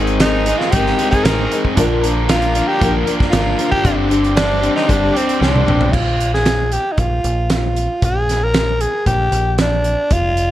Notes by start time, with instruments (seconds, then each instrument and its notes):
Already playing: picked electric bass G#1, overdriven electric guitar G#2 D#3 G#3 C4 D#4 G#4, grand piano G#3 D#4 A#4 C5, harmonium G#3 C5 D#5 A#5, steel-string acoustic guitar A#4
0.07 closed hi-hat
0.20 overdriven electric guitar G#3 C4 D#4 G#4, tenor saxophone D#4, snare, closed hi-hat
0.24 steel-string acoustic guitar A#4
0.46 overdriven electric guitar D#3 G#3 C4 D#4 G#4, steel-string acoustic guitar A#4, closed hi-hat
0.50 overdriven electric guitar G#2
0.58 tenor saxophone F4, snare
0.71 picked electric bass G#1, overdriven electric guitar G#3 C4 D#4, tenor saxophone G4, steel-string acoustic guitar A#4, kick, closed hi-hat
0.76 overdriven electric guitar G#4
0.87 snare
0.99 overdriven electric guitar G#3 C4 D#4 G#4, steel-string acoustic guitar A#4, closed hi-hat
1.11 tenor saxophone G#4, kick, closed hi-hat
1.24 picked electric bass A1, overdriven electric guitar G#2 D#3 G#3 C4, grand piano D#4 G#4 A#4 C5, tenor saxophone A#4, steel-string acoustic guitar A#4, snare, closed hi-hat
1.28 overdriven electric guitar D#4 G#4
1.51 overdriven electric guitar G#3 C4 D#4 G#4, steel-string acoustic guitar A#4, closed hi-hat
1.65 kick
1.75 picked electric bass A#1, overdriven electric guitar A#2 D3 F3 A#3 D4 A#4, grand piano D4 F4 A#4, harmonium F4 A#4 D5, kick, closed hi-hat
1.79 grand piano D5
2.02 overdriven electric guitar F3 A#3 D4 A#4, closed hi-hat
2.29 overdriven electric guitar F3 A#3 D4 A#4, tenor saxophone F4, snare, closed hi-hat
2.42 closed hi-hat
2.54 overdriven electric guitar A#2 D3 F3 A#3 D4 A#4, closed hi-hat
2.68 tenor saxophone G4
2.80 picked electric bass A#1, steel-string acoustic guitar A#2 D3, overdriven electric guitar F3 A#3 D4 A#4, kick, closed hi-hat
3.06 overdriven electric guitar F3 A#3 D4 A#4, closed hi-hat
3.20 kick, snare
3.31 picked electric bass G#1, overdriven electric guitar A#2 D3 F3 A#3 D4 A#4, tenor saxophone F4, snare, closed hi-hat
3.58 overdriven electric guitar F3 A#3 D4 A#4, grand piano D4 F4 A#4 C5, closed hi-hat
3.71 tenor saxophone G4, kick
3.83 picked electric bass G1, overdriven electric guitar G2 D3 G3 C4 D4 G4, grand piano D4 G4 C5, harmonium G4 C5 D5 C6, kick, closed hi-hat
3.87 grand piano D5
4.10 overdriven electric guitar G3 C4 D4 G4, closed hi-hat
4.24 closed hi-hat
4.36 overdriven electric guitar G3 C4 D4 G4, tenor saxophone D4, snare, closed hi-hat
4.62 overdriven electric guitar G2 D3 G3 C4 D4 G4, closed hi-hat
4.76 tenor saxophone D#4, snare
4.88 picked electric bass G1, steel-string acoustic guitar G2 D3, overdriven electric guitar G3 C4 D4 G4, tenor saxophone D4, kick, closed hi-hat
5.14 overdriven electric guitar G3 C4 D4 G4, tenor saxophone C4, closed hi-hat
5.29 closed hi-hat
5.39 picked electric bass C2, overdriven electric guitar G2 D3 G3 C4 D4 G4, tenor saxophone D4, snare
5.55 high tom
5.65 picked electric bass A#1, overdriven electric guitar G3 C4 D4 G4, mid tom
5.81 floor tom
5.92 picked electric bass A#1, tenor saxophone F4, kick, crash
6.20 closed hi-hat
6.34 tenor saxophone G#4, snare
6.46 snare, closed hi-hat
6.72 tenor saxophone G4, closed hi-hat
6.92 tenor saxophone D#4
6.98 picked electric bass A#1, tenor saxophone F4, kick, closed hi-hat
7.24 picked electric bass A#1, closed hi-hat
7.50 tenor saxophone F4, snare, closed hi-hat
7.76 closed hi-hat
8.02 picked electric bass A#1, tenor saxophone G#4, kick, closed hi-hat
8.29 snare, closed hi-hat
8.44 tenor saxophone A#4
8.54 snare, closed hi-hat
8.81 tenor saxophone G#4, closed hi-hat
9.06 picked electric bass A#1, tenor saxophone G4, kick, closed hi-hat
9.32 picked electric bass A#1, closed hi-hat
9.58 tenor saxophone D4, snare, closed hi-hat
9.84 closed hi-hat
10.11 picked electric bass F1, tenor saxophone F4, kick, closed hi-hat
10.37 closed hi-hat